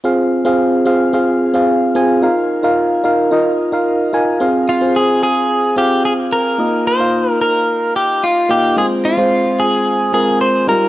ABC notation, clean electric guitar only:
X:1
M:4/4
L:1/8
Q:1/4=110
K:Fm
V:1 name="Clean electric guitar"
z8 | z8 | z F A A2 G A B- | B c2 B2 G F G |
A F2 A2 A c B |]